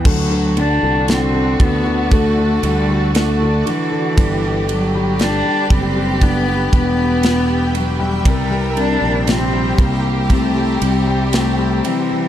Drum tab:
CC |x-------|--------|--------|
RD |-xxxxxxx|xxxxxxxx|xxxxxxxx|
SD |--o---o-|--o---o-|--o---o-|
BD |o--oo---|o--ooo--|o--oo---|